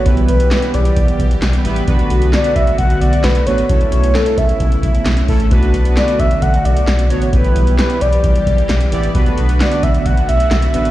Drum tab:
HH |xxxxxxxxxxxxxxxx|xxxxxxxxxxxxxxxx|xxxxxxxxxxxxxxox|xxxxxxxxxxxxxxxx|
CP |----x-------x---|----x-------x---|----x-------x---|----x-------x---|
SD |----o-------o---|----o-------o---|----o-------o---|----o-------o---|
BD |o-------o-o-----|o-----o-o-------|o-----o-o-o---o-|o-----o-o-------|

HH |xxxxxxxxxxxxxxxx|xxxxxxxxxxxxxxxx|
CP |----x-------x---|----x-------x---|
SD |----o-------o---|----o-------o---|
BD |o-------o-o-----|o-----o-o-------|